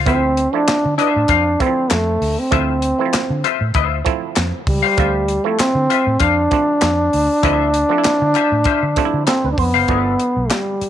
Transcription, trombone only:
0.06 0.55 C4 loud
0.53 0.97 D4 loud
0.98 1.63 D4 loud
1.61 1.93 C4 loud
1.91 2.41 A3 medium
2.39 3.61 C4 medium
4.69 5.48 G3 loud
5.47 5.60 A3 loud
5.60 6.23 C4 loud
6.21 9.26 D4 loud
9.27 9.49 C4 loud
9.53 9.60 D4 medium
9.58 10.52 B3 loud
10.50 10.89 G3 medium

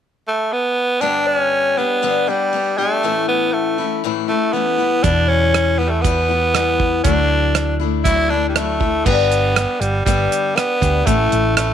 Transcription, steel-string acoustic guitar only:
1.01 1.77 G2 medium
1.01 1.77 D3 medium
1.01 1.77 G3 medium
1.01 1.77 B3 medium
1.01 1.76 G4 medium
1.77 2.02 G3 soft
1.77 2.02 B3 soft
1.77 2.03 D4 soft
1.77 2.02 G4 soft
2.02 2.27 G2 medium
2.02 2.28 D3 medium
2.02 2.28 G3 medium
2.02 2.28 B3 medium
2.02 2.27 D4 medium
2.02 2.26 G4 medium
2.27 2.52 G3 soft
2.27 2.53 B3 soft
2.27 2.53 D4 soft
2.27 2.52 G4 soft
2.53 2.78 G3 medium
2.53 2.78 B3 medium
2.53 2.78 D4 medium
2.53 2.77 G4 medium
2.78 3.04 G3 soft
2.78 3.04 B3 soft
2.78 3.04 D4 soft
2.78 3.03 G4 soft
3.03 3.78 A2 medium
3.03 4.04 E3 medium
3.03 3.79 A3 medium
3.03 3.78 C#4 medium
3.03 3.78 E4 medium
3.78 4.04 A3 soft
3.78 4.04 C#4 soft
3.78 4.03 E4 soft
4.04 4.29 A2 medium
4.04 4.29 E3 medium
4.04 4.29 A3 medium
4.04 4.29 C#4 medium
4.04 4.27 E4 medium
4.28 4.53 A3 soft
4.28 4.54 C#4 soft
4.28 4.53 E4 soft
4.53 4.78 E3 medium
4.53 4.79 A3 medium
4.53 4.79 C#4 medium
4.53 4.77 E4 medium
4.78 5.04 E3 soft
4.78 5.04 G3 soft
4.78 5.04 B3 soft
4.78 5.03 E4 soft
5.03 5.79 E2 medium
5.03 5.79 B2 medium
5.03 5.81 E3 medium
5.03 5.80 G3 medium
5.03 5.79 B3 medium
5.03 5.78 E4 medium
5.79 6.04 E3 soft
5.79 6.04 G3 soft
5.79 6.05 B3 soft
5.79 6.04 E4 soft
6.04 6.29 E2 medium
6.04 6.29 B2 medium
6.04 6.30 E3 medium
6.04 6.30 G3 medium
6.04 6.29 B3 medium
6.04 6.27 E4 medium
6.29 6.53 E3 soft
6.29 6.54 G3 soft
6.29 6.55 B3 soft
6.29 6.54 E4 soft
6.54 7.04 E3 medium
6.54 7.05 G3 medium
6.54 7.06 B3 medium
6.54 7.06 E4 medium
7.05 7.80 D3 medium
7.05 7.80 F#3 medium
7.05 7.81 A3 medium
7.05 7.80 D4 medium
7.05 7.78 E4 medium
7.80 8.05 A3 soft
7.80 8.06 D4 soft
7.80 8.05 E4 medium
8.05 8.30 D3 medium
8.05 8.31 F#3 medium
8.05 8.31 A3 medium
8.05 8.31 D4 medium
8.05 8.29 E4 medium
8.30 8.56 A3 soft
8.30 8.56 D4 soft
8.30 8.55 E4 medium
8.56 8.81 F#3 medium
8.56 8.81 A3 medium
8.56 8.81 D4 medium
8.56 8.79 E4 medium
8.80 9.07 A3 soft
8.80 9.06 D4 soft
8.80 9.05 E4 soft
9.06 9.56 G2 medium
9.06 9.56 D3 medium
9.06 9.54 G3 medium
9.06 9.55 B3 medium
9.06 9.57 D4 medium
9.06 9.57 G4 medium
9.55 10.06 G3 medium
9.55 10.06 B3 medium
9.55 10.07 D4 medium
9.55 10.07 G4 medium
10.06 10.56 G2 medium
10.06 10.57 D3 medium
10.06 10.55 G3 medium
10.06 10.56 B3 medium
10.06 10.57 D4 medium
10.06 10.57 G4 medium
10.56 10.81 G3 medium
10.56 10.82 B3 medium
10.56 10.82 D4 medium
10.56 10.80 G4 medium
10.81 11.07 G3 soft
10.81 11.07 B3 soft
10.81 11.07 D4 soft
10.81 11.06 G4 soft
11.06 11.32 A2 medium
11.06 11.32 E3 medium
11.06 11.32 A3 medium
11.06 11.32 C#4 medium
11.06 11.31 E4 medium
11.32 11.57 A3 soft
11.32 11.58 C#4 soft
11.32 11.57 E4 soft
11.57 11.74 E3 medium
11.57 11.74 A3 medium
11.57 11.74 C#4 medium
11.57 11.74 E4 medium

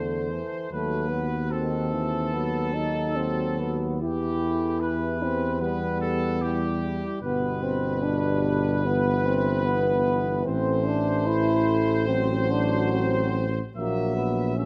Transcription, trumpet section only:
0.00 0.71 C5 soft
0.73 1.52 B4 soft
1.52 3.84 A4 soft
4.01 4.80 G4 soft
4.81 5.59 B4 soft
5.61 6.02 B4 soft
6.01 6.42 A4 medium
6.42 7.22 G4 soft
7.21 10.42 B4 soft
10.47 13.60 C5 medium
13.77 14.55 E5 medium
14.59 14.65 E5 soft

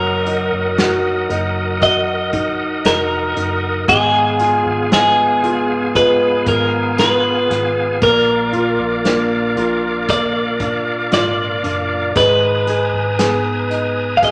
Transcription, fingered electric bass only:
0.00 0.48 F#1 loud
0.53 1.26 F#1 medium
1.30 2.81 F#1 loud
2.85 3.33 F1 medium
3.37 3.85 F#1 medium
3.89 4.62 G#1 loud
4.66 6.43 G#1 medium
6.46 7.46 G#1 loud
7.50 7.98 G#1 medium
8.02 8.75 A#1 medium
8.80 9.53 A#1 medium
9.57 11.08 A#1 medium
11.12 11.60 G#1 medium
11.64 12.12 F#1 medium
12.16 12.89 G#1 loud
12.93 14.31 G#1 medium

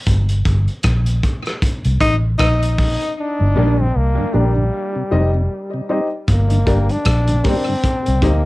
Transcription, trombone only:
3.19 3.82 D4 medium
3.81 3.98 C4 medium
3.97 4.37 A#3 medium
4.36 5.90 G3 medium
6.30 6.93 A#3 medium
6.91 7.49 D4 loud
7.47 8.27 C4 medium
8.25 8.45 A#3 medium

